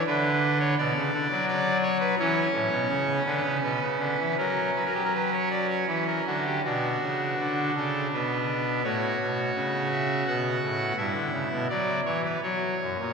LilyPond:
<<
  \new Staff \with { instrumentName = "Pipe organ" } { \time 3/4 \key b \minor \tempo 4 = 83 << { b'8. cis''16 d''4 d''8 cis''16 b'16 | cis''4. b'8 b'4 | ais'8 b'32 ais'32 g'32 ais'32 b'16 cis''16 d''16 cis''16 b'16 ais'16 fis'16 g'16 | fis'4. a'8 b'4 |
cis''4. e''8 fis''4 | e''4 d''8 cis''16 b'16 cis''4 | } \\ { r2. | cis'2. | cis'2. | d'2. |
fis'2. | e'4 r2 | } >> }
  \new Staff \with { instrumentName = "Pipe organ" } { \clef bass \time 3/4 \key b \minor d4 b,16 cis16 d16 fis4~ fis16 | e8 a,16 b,16 cis8 d16 cis16 b,16 cis16 d16 e16 | fis8 fis4. e8 d8 | b,8 cis8 d8 cis8 b,4 |
a,8 b,8 cis4 b,8 a,8 | g,16 d16 cis16 b,16 fis8 e8 fis8 fis,16 ais,16 | }
>>